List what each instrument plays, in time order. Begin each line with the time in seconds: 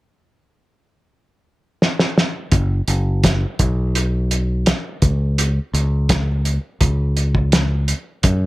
1.82 snare
2.00 snare
2.18 snare
2.52 fingered electric bass F#1, kick, closed hi-hat
2.88 fingered electric bass F#1, closed hi-hat
3.24 kick, snare, closed hi-hat
3.59 fingered electric bass B1, kick, closed hi-hat
3.95 closed hi-hat
4.31 closed hi-hat
4.66 snare, closed hi-hat
5.02 fingered electric bass C#2, kick, closed hi-hat
5.38 closed hi-hat
5.73 fingered electric bass C#2, closed hi-hat
6.09 kick, snare, closed hi-hat
6.45 closed hi-hat
6.81 fingered electric bass C#2, kick, closed hi-hat
7.17 closed hi-hat
7.35 kick
7.52 snare, closed hi-hat
7.88 closed hi-hat
8.23 fingered electric bass F#2, kick, closed hi-hat